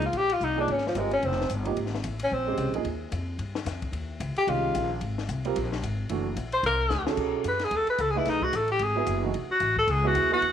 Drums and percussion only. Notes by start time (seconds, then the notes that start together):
0.02 ride
0.13 ride
0.30 ride
0.40 hi-hat pedal
0.68 ride
0.78 snare
0.87 snare
0.95 hi-hat pedal, ride
1.11 ride
1.22 ride
1.32 snare
1.41 snare
1.49 hi-hat pedal, ride
1.65 ride
1.77 ride
1.86 snare
1.95 snare
2.04 hi-hat pedal, ride
2.19 ride
2.57 hi-hat pedal, ride
2.74 ride
2.85 ride
3.12 hi-hat pedal, ride
3.39 ride
3.55 snare
3.66 snare, hi-hat pedal, ride
3.82 kick, ride
3.93 ride
4.20 hi-hat pedal, ride
4.36 ride
4.48 ride
4.75 hi-hat pedal, ride
5.01 ride
5.18 snare
5.29 hi-hat pedal, ride
5.45 ride
5.56 ride
5.72 snare
5.83 hi-hat pedal, ride
6.09 ride
6.37 hi-hat pedal, ride
6.52 ride
6.64 ride
6.90 snare, hi-hat pedal
7.07 snare
7.17 kick, crash
7.44 hi-hat pedal, ride
7.59 snare, ride
7.71 ride
7.87 ride
7.98 hi-hat pedal, ride
8.25 snare, ride
8.42 kick
8.53 hi-hat pedal, ride
8.68 ride
8.79 ride
9.06 hi-hat pedal, ride
9.34 ride
9.60 hi-hat pedal, ride
9.77 kick
9.88 ride
10.15 hi-hat pedal, ride
10.42 ride